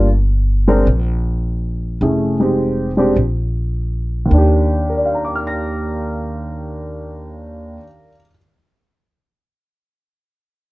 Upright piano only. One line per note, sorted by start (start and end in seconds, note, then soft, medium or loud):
0.68 0.85 G#3 medium
0.68 0.85 C4 medium
0.68 0.85 D4 medium
0.68 0.85 A#4 medium
2.02 2.36 A3 soft
2.02 2.37 C#4 soft
2.02 2.37 E4 soft
2.02 2.37 G#4 soft
2.40 2.90 G#3 soft
2.40 2.90 C4 soft
2.40 2.90 D#4 soft
2.40 2.90 G4 medium
2.97 3.14 G#3 medium
2.97 3.15 C4 medium
2.97 3.15 D4 medium
2.97 3.15 G4 medium
4.26 7.75 D#2 medium
4.30 7.80 D#3 medium
4.30 7.83 D4 soft
4.37 7.87 G4 medium
4.90 8.07 A#4 soft
4.97 8.11 D5 soft
5.06 8.15 F5 soft
5.15 8.20 A#5 soft
5.25 8.25 D6 soft
5.35 8.30 F6 soft
5.47 8.36 A#6 soft